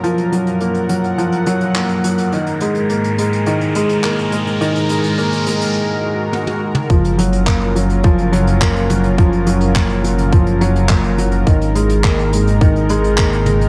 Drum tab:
HH |xxxxxxxxxxxxxxxx|xxxxxxxxxxxxxxxx|xxxxxxxx--------|xxxxxxxxxxxxxxxx|
CP |------------x---|------------x---|----------------|----x-------x---|
T1 |----------------|----------------|------------oo--|----------------|
T2 |----------------|----------------|---------------o|--------------o-|
BD |----------------|----------------|----------------|o---o---o---o---|

HH |xxxxxxxxxxxxxxxx|xxxxxxxxxxxxxxxx|
CP |----x-------x---|----x-------x---|
T1 |----------------|----------------|
T2 |----------------|--------------o-|
BD |o---o---o---o---|o---o---o---o---|